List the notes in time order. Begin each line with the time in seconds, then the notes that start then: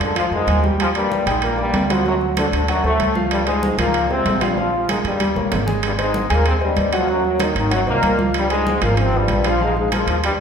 Already playing: G#3 G#4 A#4
0.00 F2 D3 D4, high timbale
0.15 F3 F4 F5, high conga, high timbale
0.31 F2 G#2 G#3 G#4 A#4, high conga
0.47 D#2, high conga, high timbale
0.63 G3 G4 G5, high conga
0.80 F3 F4, high conga, high timbale
0.95 G2 G3 A#3 A#4 D5, high conga, high timbale
1.12 high conga
1.26 A#1 G#2 G3 G#3 G4 G5, high conga, high timbale
1.42 A#2 A#3, high conga, high timbale
1.58 G2 G3 A#3 A#4 D5, high conga
1.74 D2, high conga, high timbale, low timbale
1.90 F3 F#3 F4 F#4 F#5, high conga, high timbale
2.05 F#2 F#3 F#4 F#5, high conga
2.21 high conga
2.37 D3 A3 D4 A4 C5, high conga, high timbale
2.52 D2 D3 D4, high timbale
2.68 F#2 F#3 F#4 F#5, high conga, high timbale
2.84 D2 A2 A3 A4 C5, high conga
3.00 C#2, high conga, high timbale
3.15 F3 F4 F5, high conga
3.31 G2 G3, high conga, high timbale
3.46 G#2 G#3 G#4 C5, high conga, high timbale
3.63 high conga
3.78 C#2 A#2 F3 A#3 F4 F5, high conga, high timbale
3.94 high conga, high timbale
4.10 C3 G#3 C4 G#4 C5, high conga
4.26 A#1, high conga, high timbale, low timbale
4.41 G2 F3 G3 F4 F5, high conga, high timbale
4.57 F3 F4 F5, high conga
4.74 high conga
4.89 G#2 G#3 G#4 A#4, high conga, high timbale
5.04 D#2 G2 G3, high timbale
5.20 G3 G4 G5, high conga, high timbale
5.36 A#1 A#3 A#4 C#5, high conga
5.52 G#1, low conga, high timbale, low timbale
5.66 G#3 G#4 G#5, low conga
5.83 G2 G3, high conga, high timbale
5.98 G#2 G#3 C4 C5 D#5, high conga, high timbale
6.14 high conga
6.29 D#2 A#2 G#3 A#3 G#4 G#5, high conga, high timbale
6.46 C3 C4, high conga, high timbale
6.61 G2 G3 C4 C5 D#5, high conga
6.76 D#2, high conga, high timbale
6.93 F3 F#3 F4 F#4 F#5, high timbale
7.08 F#2 F#3 F#4 F#5, high conga
7.24 F#2 F#3, high conga
7.39 D#3 A#3 D#4 A#4 C#5, high conga, high timbale
7.55 G#1 D#3 D#4, high timbale
7.70 F#2 F#3 F#4 F#5, high conga, high timbale
7.86 C2 A#2 A#3 C4 C5 D#5, high conga
8.03 C#2, high conga, high timbale
8.18 F3 F4 F5, high conga
8.34 G2 G3, high conga, high timbale
8.50 G#2 G#3 G#4 C5, high conga, high timbale
8.67 high conga
8.81 G#1 A#2 F3 A#3 F4 F5, high conga, high timbale
8.95 C#4, high conga, high timbale
9.00 C3 C4
9.13 G2 F3 G3 F4 C5, high conga
9.28 A#1, high conga, high timbale
9.44 F3 F4 F5, high timbale
9.61 G#2 F3 G#3 F4 F5, high conga
9.77 G#2 G#3, high conga
9.92 F3 G#3 F4 G#4 A#4, high conga, high timbale
10.07 D#2 F3 F4, high timbale
10.24 G2 G3 G4 G5, high conga, high timbale